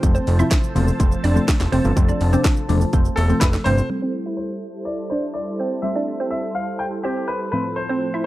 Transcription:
0.00 0.19 F1 loud
0.00 0.29 C3 medium
0.00 3.86 F3 medium
0.00 0.29 F3 medium
0.00 0.29 A3 medium
0.00 0.29 C4 medium
0.00 3.86 A4 medium
0.00 3.86 C5 medium
0.00 3.86 A5 medium
0.00 kick loud
0.00 closed hi-hat medium
0.00 shaker medium
0.15 0.26 C4 medium
0.15 0.25 C5 medium
0.15 shaker medium
0.27 0.43 F1 medium
0.27 open hi-hat medium
0.27 shaker medium
0.39 0.65 C3 medium
0.39 0.65 F3 medium
0.39 0.65 A3 medium
0.39 0.65 C4 medium
0.39 0.74 E4 medium
0.39 0.73 E5 medium
0.39 shaker medium
0.51 kick loud
0.51 snare loud
0.51 clap loud
0.51 closed hi-hat medium
0.51 shaker medium
0.63 shaker medium
0.75 0.91 E1 loud
0.75 0.93 C3 medium
0.75 0.93 F3 medium
0.75 0.93 A3 medium
0.75 0.93 C4 medium
0.75 open hi-hat medium
0.75 shaker medium
0.88 shaker medium
0.99 1.16 F1 loud
0.99 1.25 C3 medium
0.99 1.26 F3 medium
0.99 1.26 A3 medium
0.99 1.26 C4 loud
0.99 kick loud
0.99 closed hi-hat medium
0.99 shaker medium
1.12 shaker medium
1.24 1.40 F1 medium
1.24 1.35 D4 medium
1.24 1.34 D5 medium
1.24 open hi-hat medium
1.24 shaker medium
1.36 1.62 C3 medium
1.36 1.62 F3 medium
1.36 1.62 A3 medium
1.36 1.62 C4 medium
1.36 shaker medium
1.48 kick loud
1.48 snare medium
1.48 clap loud
1.48 closed hi-hat medium
1.48 shaker medium
1.60 1.68 E1 medium
1.60 snare medium
1.60 clap medium
1.60 shaker medium
1.72 1.80 F1 medium
1.72 1.89 C3 medium
1.72 1.89 F3 medium
1.72 1.90 A3 medium
1.72 1.90 C4 medium
1.72 1.83 C4 medium
1.72 1.83 C5 medium
1.72 open hi-hat medium
1.72 shaker medium
1.85 1.93 G1 medium
1.85 shaker medium
1.96 2.12 F1 loud
1.96 2.22 C3 medium
1.96 2.22 F3 medium
1.96 2.22 A3 medium
1.96 2.22 C4 medium
1.96 kick loud
1.96 closed hi-hat medium
1.96 shaker medium
2.09 2.19 D4 medium
2.09 2.19 D5 medium
2.09 shaker medium
2.21 2.37 F1 loud
2.21 open hi-hat medium
2.21 shaker soft
2.32 2.58 C3 medium
2.32 2.59 F3 medium
2.32 2.59 A3 medium
2.32 2.67 C4 medium
2.32 2.59 D4 medium
2.32 2.67 C5 medium
2.32 shaker medium
2.44 kick loud
2.44 snare medium
2.44 clap loud
2.44 closed hi-hat medium
2.44 shaker medium
2.57 shaker medium
2.69 2.85 E1 loud
2.69 2.86 C3 medium
2.69 2.86 F3 medium
2.69 2.86 A3 medium
2.69 2.86 D4 medium
2.69 open hi-hat medium
2.69 shaker medium
2.81 shaker medium
2.93 3.09 F1 loud
2.93 3.19 C3 medium
2.93 3.19 F3 medium
2.93 3.19 A3 medium
2.93 3.19 C4 loud
2.93 kick loud
2.93 closed hi-hat medium
2.93 shaker medium
3.05 shaker medium
3.16 3.33 E1 loud
3.16 3.39 A3 medium
3.16 3.42 A4 medium
3.16 3.38 A4 medium
3.16 open hi-hat medium
3.16 shaker medium
3.29 3.55 C3 medium
3.29 3.55 F3 medium
3.29 3.55 A3 medium
3.29 3.56 C4 medium
3.29 shaker medium
3.40 3.57 F1 loud
3.40 3.52 A3 medium
3.40 3.52 A4 medium
3.40 3.46 B4 medium
3.40 kick loud
3.40 snare loud
3.40 clap loud
3.40 closed hi-hat medium
3.40 shaker medium
3.53 snare medium
3.53 clap medium
3.53 shaker medium
3.64 3.82 G1 medium
3.64 3.83 C3 medium
3.64 3.83 F3 medium
3.64 3.83 A3 medium
3.64 3.83 C4 medium
3.64 3.76 C4 medium
3.64 4.35 C5 loud
3.64 3.76 C5 medium
3.64 open hi-hat medium
3.64 shaker medium
3.78 shaker medium
3.90 5.80 G3 medium
3.90 7.49 G3 medium
3.90 5.80 A3 medium
3.90 5.80 C4 medium
3.90 7.49 E4 medium
3.90 8.26 A4 medium
3.90 8.26 C5 medium
4.02 4.13 C4 medium
4.02 4.12 C5 medium
4.26 4.61 E4 medium
4.26 4.60 E5 medium
4.37 4.83 C5 medium
4.85 5.11 D5 medium
5.10 5.22 D4 medium
5.10 5.35 C5 medium
5.10 5.21 D5 medium
5.34 5.84 D5 medium
5.60 5.70 C4 medium
5.60 5.70 C5 medium
5.82 7.49 G3 medium
5.82 7.50 A3 medium
5.82 7.50 C4 medium
5.82 6.29 E5 medium
5.96 6.06 D4 medium
5.96 6.06 D5 medium
6.20 6.55 C4 medium
6.20 6.54 C5 medium
6.31 6.56 E5 medium
6.55 6.81 F5 medium
6.79 6.85 G5 medium
7.03 7.39 C4 medium
7.03 7.29 G4 medium
7.03 7.39 C5 medium
7.28 7.50 B4 medium
7.52 8.26 A2 medium
7.52 8.26 F3 medium
7.52 8.26 A3 medium
7.52 8.26 C4 medium
7.52 7.75 B4 medium
7.76 8.23 C5 medium
7.89 8.00 C4 medium
7.89 8.00 C5 medium
8.14 8.26 E4 medium
8.14 8.26 E5 medium

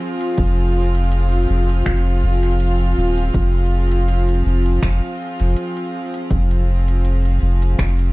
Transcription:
0.00 8.13 F3 medium
0.00 8.13 C4 medium
0.00 8.13 F4 medium
0.00 8.13 G#4 medium
0.21 closed hi-hat soft
0.38 1.46 F1 loud
0.38 kick loud
0.38 closed hi-hat medium
0.95 closed hi-hat soft
1.12 closed hi-hat medium
1.32 closed hi-hat soft
1.50 1.82 F1 loud
1.69 closed hi-hat soft
1.86 2.23 F1 loud
1.86 finger snap medium
1.86 kick loud
1.86 closed hi-hat soft
2.24 2.94 F1 loud
2.43 closed hi-hat soft
2.60 closed hi-hat medium
2.81 closed hi-hat soft
2.97 3.30 D#1 medium
3.18 closed hi-hat soft
3.34 4.42 F1 loud
3.34 kick loud
3.34 closed hi-hat medium
3.92 closed hi-hat soft
4.08 closed hi-hat medium
4.29 closed hi-hat soft
4.46 4.79 F1 loud
4.66 closed hi-hat soft
4.82 5.01 F1 medium
4.82 finger snap medium
4.82 kick loud
4.82 closed hi-hat medium
5.40 5.55 F1 loud
5.40 closed hi-hat soft
5.56 closed hi-hat soft
5.77 closed hi-hat soft
6.14 closed hi-hat soft
6.31 7.39 F1 loud
6.31 kick loud
6.31 closed hi-hat medium
6.51 closed hi-hat soft
6.88 closed hi-hat soft
7.05 closed hi-hat medium
7.25 closed hi-hat soft
7.42 7.75 F1 loud
7.62 closed hi-hat soft
7.79 8.13 F1 loud
7.79 finger snap medium
7.79 kick loud
7.79 closed hi-hat medium
7.99 closed hi-hat soft

